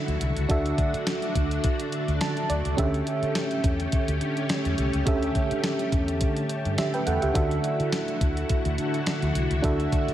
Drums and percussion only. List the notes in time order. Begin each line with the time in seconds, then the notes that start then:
0.08 closed hi-hat
0.21 closed hi-hat
0.37 closed hi-hat
0.50 kick, closed hi-hat
0.66 closed hi-hat
0.78 kick, closed hi-hat
0.94 closed hi-hat
1.07 snare, closed hi-hat
1.22 closed hi-hat
1.35 kick, closed hi-hat
1.51 closed hi-hat
1.64 kick, closed hi-hat
1.80 closed hi-hat
1.92 closed hi-hat
2.08 closed hi-hat
2.21 snare, closed hi-hat
2.37 closed hi-hat
2.50 closed hi-hat
2.65 closed hi-hat
2.78 kick, closed hi-hat
2.94 closed hi-hat
3.07 closed hi-hat
3.23 closed hi-hat
3.35 snare, closed hi-hat
3.51 closed hi-hat
3.64 kick, closed hi-hat
3.80 closed hi-hat
3.92 kick, closed hi-hat
4.08 closed hi-hat
4.21 closed hi-hat
4.37 closed hi-hat
4.49 snare, closed hi-hat
4.65 closed hi-hat
4.78 closed hi-hat
4.93 closed hi-hat
5.07 kick, closed hi-hat
5.22 closed hi-hat
5.35 kick, closed hi-hat
5.51 closed hi-hat
5.64 snare, closed hi-hat
5.79 closed hi-hat
5.92 kick, closed hi-hat
6.08 closed hi-hat
6.21 kick, closed hi-hat
6.37 closed hi-hat
6.49 closed hi-hat
6.65 closed hi-hat
6.78 snare, closed hi-hat
6.94 closed hi-hat
7.07 closed hi-hat
7.22 closed hi-hat
7.35 kick, closed hi-hat
7.51 closed hi-hat
7.64 closed hi-hat
7.80 closed hi-hat
7.92 snare, closed hi-hat
8.08 closed hi-hat
8.21 kick, closed hi-hat
8.37 closed hi-hat
8.49 kick, closed hi-hat
8.65 closed hi-hat
8.78 closed hi-hat
8.94 closed hi-hat
9.06 snare, closed hi-hat
9.22 closed hi-hat
9.35 closed hi-hat
9.51 closed hi-hat
9.64 kick, closed hi-hat
9.80 closed hi-hat
9.92 kick, closed hi-hat
10.08 closed hi-hat